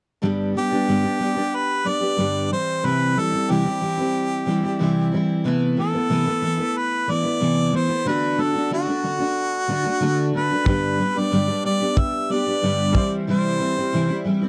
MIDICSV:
0, 0, Header, 1, 5, 480
1, 0, Start_track
1, 0, Key_signature, 1, "major"
1, 0, Tempo, 652174
1, 165, Time_signature, 4, 2, 24, 8
1, 10663, End_track
2, 0, Start_track
2, 0, Title_t, "Harmonica"
2, 0, Program_c, 0, 22
2, 427, Note_on_c, 0, 67, 81
2, 1144, Note_on_c, 0, 71, 96
2, 1155, Note_off_c, 0, 67, 0
2, 1381, Note_on_c, 0, 74, 94
2, 1392, Note_off_c, 0, 71, 0
2, 1853, Note_off_c, 0, 74, 0
2, 1860, Note_on_c, 0, 72, 79
2, 2104, Note_on_c, 0, 71, 82
2, 2115, Note_off_c, 0, 72, 0
2, 2348, Note_on_c, 0, 69, 80
2, 2359, Note_off_c, 0, 71, 0
2, 2584, Note_on_c, 0, 67, 77
2, 2595, Note_off_c, 0, 69, 0
2, 3776, Note_off_c, 0, 67, 0
2, 4266, Note_on_c, 0, 69, 81
2, 4988, Note_on_c, 0, 71, 84
2, 4999, Note_off_c, 0, 69, 0
2, 5231, Note_on_c, 0, 74, 82
2, 5242, Note_off_c, 0, 71, 0
2, 5707, Note_on_c, 0, 72, 76
2, 5718, Note_off_c, 0, 74, 0
2, 5945, Note_on_c, 0, 71, 82
2, 5956, Note_off_c, 0, 72, 0
2, 6192, Note_on_c, 0, 69, 71
2, 6203, Note_off_c, 0, 71, 0
2, 6420, Note_off_c, 0, 69, 0
2, 6429, Note_on_c, 0, 66, 87
2, 7590, Note_off_c, 0, 66, 0
2, 7628, Note_on_c, 0, 71, 88
2, 8232, Note_on_c, 0, 74, 93
2, 8243, Note_off_c, 0, 71, 0
2, 8576, Note_off_c, 0, 74, 0
2, 8580, Note_on_c, 0, 74, 92
2, 8827, Note_on_c, 0, 76, 95
2, 8838, Note_off_c, 0, 74, 0
2, 9067, Note_on_c, 0, 74, 99
2, 9078, Note_off_c, 0, 76, 0
2, 9666, Note_off_c, 0, 74, 0
2, 9791, Note_on_c, 0, 72, 85
2, 10470, Note_off_c, 0, 72, 0
2, 10663, End_track
3, 0, Start_track
3, 0, Title_t, "Upright piano"
3, 0, Program_c, 1, 0
3, 7833, Note_on_c, 1, 55, 55
3, 7842, Note_on_c, 1, 59, 51
3, 7852, Note_on_c, 1, 62, 51
3, 7863, Note_on_c, 1, 71, 64
3, 7992, Control_c, 1, 64, 127
3, 9492, Note_off_c, 1, 55, 0
3, 9496, Note_off_c, 1, 59, 0
3, 9501, Note_off_c, 1, 62, 0
3, 9506, Note_off_c, 1, 71, 0
3, 9513, Note_on_c, 1, 55, 63
3, 9521, Note_on_c, 1, 60, 51
3, 9534, Note_on_c, 1, 64, 51
3, 9539, Control_c, 1, 64, 0
3, 9544, Note_on_c, 1, 72, 65
3, 9684, Control_c, 1, 64, 127
3, 10663, Note_off_c, 1, 55, 0
3, 10663, Note_off_c, 1, 60, 0
3, 10663, Note_off_c, 1, 64, 0
3, 10663, Note_off_c, 1, 72, 0
3, 10663, End_track
4, 0, Start_track
4, 0, Title_t, "Steel-string acoustic guitar"
4, 0, Program_c, 2, 25
4, 160, Note_on_c, 2, 43, 75
4, 163, Note_on_c, 2, 50, 73
4, 166, Note_on_c, 2, 55, 87
4, 170, Note_on_c, 2, 62, 78
4, 171, Note_on_c, 2, 59, 88
4, 172, Note_on_c, 2, 67, 79
4, 390, Note_off_c, 2, 55, 0
4, 397, Note_off_c, 2, 59, 0
4, 399, Note_on_c, 2, 55, 53
4, 402, Note_off_c, 2, 62, 0
4, 403, Note_off_c, 2, 43, 0
4, 404, Note_off_c, 2, 50, 0
4, 406, Note_on_c, 2, 59, 57
4, 408, Note_off_c, 2, 67, 0
4, 411, Note_on_c, 2, 62, 52
4, 416, Note_on_c, 2, 67, 60
4, 512, Note_off_c, 2, 67, 0
4, 519, Note_off_c, 2, 62, 0
4, 521, Note_on_c, 2, 67, 51
4, 522, Note_off_c, 2, 55, 0
4, 525, Note_off_c, 2, 59, 0
4, 527, Note_on_c, 2, 62, 46
4, 534, Note_on_c, 2, 59, 44
4, 538, Note_on_c, 2, 55, 37
4, 642, Note_off_c, 2, 55, 0
4, 643, Note_off_c, 2, 67, 0
4, 643, Note_on_c, 2, 43, 71
4, 644, Note_off_c, 2, 59, 0
4, 644, Note_off_c, 2, 62, 0
4, 649, Note_on_c, 2, 50, 75
4, 650, Note_on_c, 2, 55, 70
4, 653, Note_on_c, 2, 59, 73
4, 653, Note_on_c, 2, 62, 72
4, 656, Note_on_c, 2, 67, 74
4, 754, Note_off_c, 2, 67, 0
4, 762, Note_off_c, 2, 62, 0
4, 763, Note_on_c, 2, 67, 44
4, 764, Note_off_c, 2, 43, 0
4, 767, Note_off_c, 2, 50, 0
4, 768, Note_off_c, 2, 55, 0
4, 769, Note_off_c, 2, 59, 0
4, 771, Note_on_c, 2, 62, 45
4, 778, Note_on_c, 2, 59, 37
4, 781, Note_on_c, 2, 55, 34
4, 867, Note_off_c, 2, 55, 0
4, 874, Note_off_c, 2, 59, 0
4, 875, Note_on_c, 2, 55, 50
4, 879, Note_off_c, 2, 62, 0
4, 882, Note_on_c, 2, 59, 51
4, 884, Note_off_c, 2, 67, 0
4, 888, Note_on_c, 2, 62, 55
4, 892, Note_on_c, 2, 67, 61
4, 987, Note_off_c, 2, 67, 0
4, 995, Note_off_c, 2, 62, 0
4, 995, Note_on_c, 2, 67, 44
4, 999, Note_off_c, 2, 59, 0
4, 1000, Note_off_c, 2, 55, 0
4, 1003, Note_on_c, 2, 62, 43
4, 1008, Note_on_c, 2, 59, 41
4, 1013, Note_on_c, 2, 55, 38
4, 1347, Note_off_c, 2, 55, 0
4, 1355, Note_off_c, 2, 59, 0
4, 1356, Note_on_c, 2, 55, 53
4, 1361, Note_off_c, 2, 67, 0
4, 1363, Note_off_c, 2, 62, 0
4, 1364, Note_on_c, 2, 59, 55
4, 1371, Note_on_c, 2, 62, 60
4, 1376, Note_on_c, 2, 67, 56
4, 1465, Note_off_c, 2, 67, 0
4, 1469, Note_off_c, 2, 62, 0
4, 1474, Note_on_c, 2, 67, 41
4, 1478, Note_off_c, 2, 59, 0
4, 1478, Note_on_c, 2, 62, 43
4, 1481, Note_off_c, 2, 55, 0
4, 1487, Note_on_c, 2, 59, 40
4, 1490, Note_on_c, 2, 55, 35
4, 1593, Note_off_c, 2, 55, 0
4, 1595, Note_off_c, 2, 59, 0
4, 1595, Note_on_c, 2, 43, 69
4, 1598, Note_off_c, 2, 62, 0
4, 1600, Note_off_c, 2, 67, 0
4, 1601, Note_on_c, 2, 50, 67
4, 1602, Note_on_c, 2, 55, 77
4, 1604, Note_on_c, 2, 59, 70
4, 1607, Note_on_c, 2, 62, 72
4, 1610, Note_on_c, 2, 67, 77
4, 1837, Note_off_c, 2, 55, 0
4, 1840, Note_on_c, 2, 52, 53
4, 1841, Note_off_c, 2, 43, 0
4, 1843, Note_off_c, 2, 50, 0
4, 1844, Note_off_c, 2, 59, 0
4, 1846, Note_on_c, 2, 55, 55
4, 1847, Note_off_c, 2, 62, 0
4, 1848, Note_off_c, 2, 67, 0
4, 1852, Note_on_c, 2, 60, 58
4, 1857, Note_on_c, 2, 64, 56
4, 2079, Note_off_c, 2, 52, 0
4, 2079, Note_off_c, 2, 55, 0
4, 2085, Note_off_c, 2, 60, 0
4, 2085, Note_on_c, 2, 48, 68
4, 2086, Note_off_c, 2, 64, 0
4, 2088, Note_on_c, 2, 52, 68
4, 2088, Note_on_c, 2, 55, 78
4, 2094, Note_on_c, 2, 60, 70
4, 2095, Note_on_c, 2, 64, 70
4, 2313, Note_off_c, 2, 52, 0
4, 2320, Note_off_c, 2, 55, 0
4, 2322, Note_on_c, 2, 52, 49
4, 2323, Note_off_c, 2, 60, 0
4, 2326, Note_off_c, 2, 48, 0
4, 2328, Note_on_c, 2, 55, 55
4, 2331, Note_off_c, 2, 64, 0
4, 2332, Note_on_c, 2, 60, 56
4, 2340, Note_on_c, 2, 64, 56
4, 2432, Note_off_c, 2, 64, 0
4, 2441, Note_on_c, 2, 64, 49
4, 2444, Note_off_c, 2, 52, 0
4, 2444, Note_off_c, 2, 60, 0
4, 2447, Note_off_c, 2, 55, 0
4, 2453, Note_on_c, 2, 60, 46
4, 2459, Note_on_c, 2, 55, 45
4, 2563, Note_off_c, 2, 55, 0
4, 2564, Note_off_c, 2, 64, 0
4, 2564, Note_on_c, 2, 48, 72
4, 2565, Note_off_c, 2, 60, 0
4, 2568, Note_on_c, 2, 52, 74
4, 2572, Note_on_c, 2, 55, 82
4, 2574, Note_on_c, 2, 60, 73
4, 2574, Note_on_c, 2, 64, 86
4, 2675, Note_off_c, 2, 64, 0
4, 2684, Note_on_c, 2, 64, 50
4, 2685, Note_off_c, 2, 48, 0
4, 2685, Note_off_c, 2, 60, 0
4, 2687, Note_off_c, 2, 52, 0
4, 2689, Note_off_c, 2, 55, 0
4, 2694, Note_on_c, 2, 60, 43
4, 2702, Note_on_c, 2, 55, 37
4, 2798, Note_off_c, 2, 55, 0
4, 2801, Note_on_c, 2, 52, 48
4, 2804, Note_off_c, 2, 60, 0
4, 2806, Note_off_c, 2, 64, 0
4, 2806, Note_on_c, 2, 55, 54
4, 2813, Note_on_c, 2, 60, 54
4, 2820, Note_on_c, 2, 64, 59
4, 2915, Note_off_c, 2, 64, 0
4, 2923, Note_on_c, 2, 64, 46
4, 2924, Note_off_c, 2, 52, 0
4, 2924, Note_off_c, 2, 60, 0
4, 2927, Note_off_c, 2, 55, 0
4, 2933, Note_on_c, 2, 60, 44
4, 2942, Note_on_c, 2, 55, 42
4, 3280, Note_off_c, 2, 55, 0
4, 3283, Note_on_c, 2, 52, 63
4, 3285, Note_off_c, 2, 60, 0
4, 3285, Note_off_c, 2, 64, 0
4, 3289, Note_on_c, 2, 55, 62
4, 3294, Note_on_c, 2, 60, 66
4, 3300, Note_on_c, 2, 64, 63
4, 3393, Note_off_c, 2, 64, 0
4, 3402, Note_on_c, 2, 64, 51
4, 3404, Note_off_c, 2, 60, 0
4, 3405, Note_off_c, 2, 52, 0
4, 3408, Note_off_c, 2, 55, 0
4, 3413, Note_on_c, 2, 60, 43
4, 3420, Note_on_c, 2, 55, 40
4, 3525, Note_off_c, 2, 64, 0
4, 3526, Note_off_c, 2, 55, 0
4, 3526, Note_on_c, 2, 48, 73
4, 3530, Note_off_c, 2, 60, 0
4, 3530, Note_on_c, 2, 52, 73
4, 3535, Note_on_c, 2, 55, 88
4, 3538, Note_on_c, 2, 60, 80
4, 3539, Note_on_c, 2, 64, 85
4, 3758, Note_off_c, 2, 52, 0
4, 3766, Note_off_c, 2, 55, 0
4, 3767, Note_off_c, 2, 48, 0
4, 3767, Note_on_c, 2, 52, 58
4, 3773, Note_off_c, 2, 60, 0
4, 3773, Note_off_c, 2, 64, 0
4, 3775, Note_on_c, 2, 55, 61
4, 3783, Note_on_c, 2, 60, 62
4, 3788, Note_on_c, 2, 64, 70
4, 4001, Note_off_c, 2, 52, 0
4, 4005, Note_on_c, 2, 48, 79
4, 4010, Note_off_c, 2, 55, 0
4, 4010, Note_on_c, 2, 52, 84
4, 4011, Note_off_c, 2, 64, 0
4, 4013, Note_off_c, 2, 60, 0
4, 4013, Note_on_c, 2, 57, 83
4, 4016, Note_on_c, 2, 59, 88
4, 4020, Note_on_c, 2, 64, 89
4, 4237, Note_off_c, 2, 52, 0
4, 4243, Note_off_c, 2, 57, 0
4, 4246, Note_off_c, 2, 48, 0
4, 4246, Note_on_c, 2, 52, 50
4, 4249, Note_off_c, 2, 59, 0
4, 4252, Note_on_c, 2, 57, 55
4, 4254, Note_off_c, 2, 64, 0
4, 4258, Note_on_c, 2, 59, 58
4, 4264, Note_on_c, 2, 64, 59
4, 4353, Note_off_c, 2, 64, 0
4, 4362, Note_on_c, 2, 64, 51
4, 4366, Note_off_c, 2, 59, 0
4, 4367, Note_off_c, 2, 52, 0
4, 4370, Note_off_c, 2, 57, 0
4, 4374, Note_on_c, 2, 59, 47
4, 4382, Note_on_c, 2, 57, 39
4, 4482, Note_off_c, 2, 57, 0
4, 4482, Note_on_c, 2, 48, 71
4, 4485, Note_off_c, 2, 59, 0
4, 4485, Note_off_c, 2, 64, 0
4, 4488, Note_on_c, 2, 52, 70
4, 4490, Note_on_c, 2, 57, 75
4, 4494, Note_on_c, 2, 59, 76
4, 4494, Note_on_c, 2, 64, 80
4, 4597, Note_off_c, 2, 64, 0
4, 4605, Note_off_c, 2, 48, 0
4, 4605, Note_off_c, 2, 59, 0
4, 4606, Note_on_c, 2, 64, 46
4, 4608, Note_off_c, 2, 52, 0
4, 4609, Note_off_c, 2, 57, 0
4, 4614, Note_on_c, 2, 59, 48
4, 4621, Note_on_c, 2, 57, 39
4, 4721, Note_off_c, 2, 57, 0
4, 4722, Note_on_c, 2, 52, 54
4, 4726, Note_off_c, 2, 59, 0
4, 4727, Note_off_c, 2, 64, 0
4, 4730, Note_on_c, 2, 57, 55
4, 4735, Note_on_c, 2, 59, 56
4, 4739, Note_on_c, 2, 64, 58
4, 4832, Note_off_c, 2, 64, 0
4, 4841, Note_on_c, 2, 64, 44
4, 4842, Note_off_c, 2, 59, 0
4, 4845, Note_off_c, 2, 52, 0
4, 4849, Note_off_c, 2, 57, 0
4, 4850, Note_on_c, 2, 59, 43
4, 4859, Note_on_c, 2, 57, 38
4, 5203, Note_off_c, 2, 57, 0
4, 5205, Note_off_c, 2, 64, 0
4, 5205, Note_on_c, 2, 52, 53
4, 5209, Note_off_c, 2, 59, 0
4, 5212, Note_on_c, 2, 57, 60
4, 5218, Note_on_c, 2, 59, 58
4, 5223, Note_on_c, 2, 64, 61
4, 5314, Note_off_c, 2, 64, 0
4, 5323, Note_on_c, 2, 64, 43
4, 5326, Note_off_c, 2, 52, 0
4, 5326, Note_off_c, 2, 59, 0
4, 5330, Note_off_c, 2, 57, 0
4, 5335, Note_on_c, 2, 59, 42
4, 5342, Note_on_c, 2, 57, 39
4, 5443, Note_off_c, 2, 57, 0
4, 5445, Note_on_c, 2, 48, 66
4, 5446, Note_off_c, 2, 64, 0
4, 5447, Note_off_c, 2, 59, 0
4, 5449, Note_on_c, 2, 52, 67
4, 5452, Note_on_c, 2, 57, 72
4, 5456, Note_on_c, 2, 59, 73
4, 5457, Note_on_c, 2, 64, 83
4, 5675, Note_off_c, 2, 52, 0
4, 5680, Note_off_c, 2, 57, 0
4, 5683, Note_on_c, 2, 52, 61
4, 5687, Note_off_c, 2, 48, 0
4, 5688, Note_off_c, 2, 59, 0
4, 5689, Note_on_c, 2, 57, 55
4, 5690, Note_off_c, 2, 64, 0
4, 5697, Note_on_c, 2, 59, 58
4, 5699, Note_on_c, 2, 64, 56
4, 5794, Note_off_c, 2, 64, 0
4, 5803, Note_on_c, 2, 64, 42
4, 5804, Note_off_c, 2, 59, 0
4, 5806, Note_off_c, 2, 52, 0
4, 5809, Note_off_c, 2, 57, 0
4, 5813, Note_on_c, 2, 59, 41
4, 5821, Note_on_c, 2, 57, 36
4, 5923, Note_off_c, 2, 57, 0
4, 5925, Note_on_c, 2, 50, 75
4, 5926, Note_off_c, 2, 64, 0
4, 5931, Note_off_c, 2, 59, 0
4, 5932, Note_on_c, 2, 57, 70
4, 5936, Note_on_c, 2, 62, 79
4, 5938, Note_on_c, 2, 66, 84
4, 6152, Note_off_c, 2, 50, 0
4, 6159, Note_off_c, 2, 57, 0
4, 6160, Note_on_c, 2, 50, 55
4, 6166, Note_off_c, 2, 62, 0
4, 6168, Note_on_c, 2, 57, 57
4, 6170, Note_off_c, 2, 66, 0
4, 6175, Note_on_c, 2, 62, 54
4, 6178, Note_on_c, 2, 66, 52
4, 6277, Note_off_c, 2, 66, 0
4, 6284, Note_off_c, 2, 50, 0
4, 6285, Note_off_c, 2, 62, 0
4, 6286, Note_on_c, 2, 66, 52
4, 6288, Note_off_c, 2, 57, 0
4, 6294, Note_on_c, 2, 62, 46
4, 6303, Note_on_c, 2, 57, 37
4, 6402, Note_off_c, 2, 57, 0
4, 6405, Note_on_c, 2, 50, 68
4, 6407, Note_off_c, 2, 62, 0
4, 6407, Note_off_c, 2, 66, 0
4, 6411, Note_on_c, 2, 57, 70
4, 6415, Note_on_c, 2, 62, 78
4, 6420, Note_on_c, 2, 66, 79
4, 6512, Note_off_c, 2, 66, 0
4, 6521, Note_off_c, 2, 62, 0
4, 6521, Note_on_c, 2, 66, 45
4, 6527, Note_off_c, 2, 50, 0
4, 6530, Note_off_c, 2, 57, 0
4, 6530, Note_on_c, 2, 62, 37
4, 6539, Note_on_c, 2, 57, 34
4, 6641, Note_off_c, 2, 57, 0
4, 6645, Note_off_c, 2, 66, 0
4, 6647, Note_on_c, 2, 50, 53
4, 6649, Note_off_c, 2, 62, 0
4, 6650, Note_on_c, 2, 57, 51
4, 6658, Note_on_c, 2, 62, 62
4, 6663, Note_on_c, 2, 66, 58
4, 6750, Note_off_c, 2, 66, 0
4, 6759, Note_on_c, 2, 66, 49
4, 6761, Note_off_c, 2, 62, 0
4, 6768, Note_off_c, 2, 50, 0
4, 6769, Note_off_c, 2, 57, 0
4, 6770, Note_on_c, 2, 62, 41
4, 6778, Note_on_c, 2, 57, 38
4, 7119, Note_off_c, 2, 57, 0
4, 7122, Note_on_c, 2, 50, 60
4, 7124, Note_off_c, 2, 66, 0
4, 7126, Note_off_c, 2, 62, 0
4, 7128, Note_on_c, 2, 57, 61
4, 7135, Note_on_c, 2, 62, 72
4, 7140, Note_on_c, 2, 66, 68
4, 7230, Note_off_c, 2, 66, 0
4, 7239, Note_on_c, 2, 66, 51
4, 7241, Note_off_c, 2, 62, 0
4, 7245, Note_off_c, 2, 50, 0
4, 7248, Note_off_c, 2, 57, 0
4, 7250, Note_on_c, 2, 62, 48
4, 7257, Note_on_c, 2, 57, 38
4, 7357, Note_off_c, 2, 57, 0
4, 7362, Note_on_c, 2, 50, 82
4, 7363, Note_off_c, 2, 62, 0
4, 7364, Note_off_c, 2, 66, 0
4, 7366, Note_on_c, 2, 57, 77
4, 7371, Note_on_c, 2, 62, 80
4, 7375, Note_on_c, 2, 66, 76
4, 7594, Note_off_c, 2, 50, 0
4, 7601, Note_off_c, 2, 57, 0
4, 7603, Note_on_c, 2, 50, 48
4, 7607, Note_off_c, 2, 62, 0
4, 7610, Note_on_c, 2, 57, 56
4, 7612, Note_off_c, 2, 66, 0
4, 7615, Note_on_c, 2, 62, 56
4, 7621, Note_on_c, 2, 66, 64
4, 7715, Note_off_c, 2, 66, 0
4, 7724, Note_off_c, 2, 62, 0
4, 7724, Note_on_c, 2, 66, 40
4, 7726, Note_off_c, 2, 50, 0
4, 7730, Note_off_c, 2, 57, 0
4, 7733, Note_on_c, 2, 62, 38
4, 7743, Note_on_c, 2, 57, 38
4, 7843, Note_on_c, 2, 43, 61
4, 7846, Note_off_c, 2, 62, 0
4, 7846, Note_off_c, 2, 66, 0
4, 7846, Note_on_c, 2, 50, 72
4, 7849, Note_off_c, 2, 57, 0
4, 7849, Note_on_c, 2, 55, 78
4, 7852, Note_on_c, 2, 59, 68
4, 7855, Note_on_c, 2, 62, 76
4, 7856, Note_on_c, 2, 67, 82
4, 8072, Note_off_c, 2, 55, 0
4, 8078, Note_off_c, 2, 59, 0
4, 8081, Note_on_c, 2, 55, 54
4, 8084, Note_off_c, 2, 62, 0
4, 8086, Note_off_c, 2, 43, 0
4, 8087, Note_off_c, 2, 50, 0
4, 8087, Note_on_c, 2, 59, 54
4, 8091, Note_off_c, 2, 67, 0
4, 8093, Note_on_c, 2, 62, 52
4, 8099, Note_on_c, 2, 67, 61
4, 8192, Note_off_c, 2, 67, 0
4, 8200, Note_off_c, 2, 62, 0
4, 8201, Note_on_c, 2, 67, 50
4, 8203, Note_off_c, 2, 59, 0
4, 8205, Note_off_c, 2, 55, 0
4, 8209, Note_on_c, 2, 62, 44
4, 8212, Note_on_c, 2, 59, 45
4, 8221, Note_on_c, 2, 55, 45
4, 8323, Note_off_c, 2, 55, 0
4, 8324, Note_off_c, 2, 59, 0
4, 8325, Note_off_c, 2, 67, 0
4, 8325, Note_on_c, 2, 43, 67
4, 8326, Note_off_c, 2, 62, 0
4, 8329, Note_on_c, 2, 50, 76
4, 8332, Note_on_c, 2, 55, 74
4, 8333, Note_on_c, 2, 59, 71
4, 8335, Note_on_c, 2, 62, 75
4, 8337, Note_on_c, 2, 67, 79
4, 8437, Note_off_c, 2, 67, 0
4, 8444, Note_off_c, 2, 62, 0
4, 8446, Note_on_c, 2, 67, 44
4, 8447, Note_off_c, 2, 43, 0
4, 8449, Note_off_c, 2, 50, 0
4, 8450, Note_off_c, 2, 55, 0
4, 8451, Note_off_c, 2, 59, 0
4, 8453, Note_on_c, 2, 62, 47
4, 8458, Note_on_c, 2, 59, 35
4, 8462, Note_on_c, 2, 55, 35
4, 8555, Note_off_c, 2, 55, 0
4, 8561, Note_off_c, 2, 59, 0
4, 8563, Note_on_c, 2, 55, 51
4, 8567, Note_off_c, 2, 67, 0
4, 8569, Note_off_c, 2, 62, 0
4, 8570, Note_on_c, 2, 59, 46
4, 8577, Note_on_c, 2, 62, 53
4, 8581, Note_on_c, 2, 67, 51
4, 8676, Note_off_c, 2, 67, 0
4, 8683, Note_off_c, 2, 62, 0
4, 8685, Note_on_c, 2, 67, 47
4, 8686, Note_off_c, 2, 55, 0
4, 8688, Note_off_c, 2, 59, 0
4, 8692, Note_on_c, 2, 62, 46
4, 8697, Note_on_c, 2, 59, 38
4, 8704, Note_on_c, 2, 55, 35
4, 9039, Note_off_c, 2, 55, 0
4, 9044, Note_off_c, 2, 59, 0
4, 9047, Note_off_c, 2, 67, 0
4, 9048, Note_on_c, 2, 55, 48
4, 9051, Note_off_c, 2, 62, 0
4, 9053, Note_on_c, 2, 59, 57
4, 9059, Note_on_c, 2, 62, 65
4, 9063, Note_on_c, 2, 67, 64
4, 9159, Note_off_c, 2, 67, 0
4, 9164, Note_off_c, 2, 62, 0
4, 9168, Note_off_c, 2, 55, 0
4, 9168, Note_on_c, 2, 67, 50
4, 9171, Note_off_c, 2, 59, 0
4, 9173, Note_on_c, 2, 62, 45
4, 9181, Note_on_c, 2, 59, 38
4, 9187, Note_on_c, 2, 55, 37
4, 9286, Note_off_c, 2, 55, 0
4, 9287, Note_off_c, 2, 59, 0
4, 9287, Note_on_c, 2, 43, 76
4, 9288, Note_off_c, 2, 67, 0
4, 9289, Note_off_c, 2, 62, 0
4, 9291, Note_on_c, 2, 50, 73
4, 9295, Note_on_c, 2, 55, 71
4, 9296, Note_on_c, 2, 59, 68
4, 9298, Note_on_c, 2, 62, 74
4, 9301, Note_on_c, 2, 67, 84
4, 9526, Note_off_c, 2, 55, 0
4, 9528, Note_off_c, 2, 43, 0
4, 9529, Note_on_c, 2, 52, 54
4, 9530, Note_off_c, 2, 50, 0
4, 9532, Note_off_c, 2, 59, 0
4, 9534, Note_off_c, 2, 62, 0
4, 9535, Note_off_c, 2, 67, 0
4, 9535, Note_on_c, 2, 55, 56
4, 9540, Note_on_c, 2, 60, 55
4, 9548, Note_on_c, 2, 64, 60
4, 9763, Note_off_c, 2, 52, 0
4, 9766, Note_off_c, 2, 55, 0
4, 9768, Note_on_c, 2, 48, 67
4, 9770, Note_off_c, 2, 60, 0
4, 9772, Note_on_c, 2, 52, 66
4, 9773, Note_off_c, 2, 64, 0
4, 9775, Note_on_c, 2, 55, 70
4, 9778, Note_on_c, 2, 60, 70
4, 9781, Note_on_c, 2, 64, 83
4, 9993, Note_off_c, 2, 52, 0
4, 9999, Note_off_c, 2, 55, 0
4, 10002, Note_on_c, 2, 52, 55
4, 10005, Note_off_c, 2, 60, 0
4, 10008, Note_off_c, 2, 48, 0
4, 10008, Note_on_c, 2, 55, 59
4, 10011, Note_off_c, 2, 64, 0
4, 10014, Note_on_c, 2, 60, 56
4, 10020, Note_on_c, 2, 64, 63
4, 10119, Note_off_c, 2, 64, 0
4, 10125, Note_off_c, 2, 52, 0
4, 10128, Note_off_c, 2, 55, 0
4, 10128, Note_on_c, 2, 64, 43
4, 10131, Note_off_c, 2, 60, 0
4, 10139, Note_on_c, 2, 60, 46
4, 10146, Note_on_c, 2, 55, 39
4, 10246, Note_off_c, 2, 55, 0
4, 10248, Note_off_c, 2, 64, 0
4, 10248, Note_on_c, 2, 48, 69
4, 10252, Note_off_c, 2, 60, 0
4, 10252, Note_on_c, 2, 52, 71
4, 10255, Note_on_c, 2, 55, 75
4, 10260, Note_on_c, 2, 60, 77
4, 10262, Note_on_c, 2, 64, 78
4, 10356, Note_off_c, 2, 64, 0
4, 10365, Note_on_c, 2, 64, 55
4, 10368, Note_off_c, 2, 60, 0
4, 10369, Note_off_c, 2, 48, 0
4, 10371, Note_off_c, 2, 52, 0
4, 10372, Note_off_c, 2, 55, 0
4, 10377, Note_on_c, 2, 60, 46
4, 10383, Note_on_c, 2, 55, 43
4, 10484, Note_off_c, 2, 55, 0
4, 10484, Note_on_c, 2, 52, 53
4, 10487, Note_off_c, 2, 64, 0
4, 10492, Note_on_c, 2, 55, 62
4, 10493, Note_off_c, 2, 60, 0
4, 10500, Note_on_c, 2, 60, 56
4, 10502, Note_on_c, 2, 64, 74
4, 10601, Note_off_c, 2, 64, 0
4, 10606, Note_off_c, 2, 52, 0
4, 10609, Note_off_c, 2, 60, 0
4, 10610, Note_off_c, 2, 55, 0
4, 10610, Note_on_c, 2, 64, 56
4, 10617, Note_on_c, 2, 60, 51
4, 10627, Note_on_c, 2, 55, 44
4, 10663, Note_off_c, 2, 55, 0
4, 10663, Note_off_c, 2, 60, 0
4, 10663, Note_off_c, 2, 64, 0
4, 10663, End_track
5, 0, Start_track
5, 0, Title_t, "Drums"
5, 7847, Note_on_c, 9, 36, 97
5, 7921, Note_off_c, 9, 36, 0
5, 8809, Note_on_c, 9, 36, 92
5, 8883, Note_off_c, 9, 36, 0
5, 9529, Note_on_c, 9, 36, 99
5, 9602, Note_off_c, 9, 36, 0
5, 10663, End_track
0, 0, End_of_file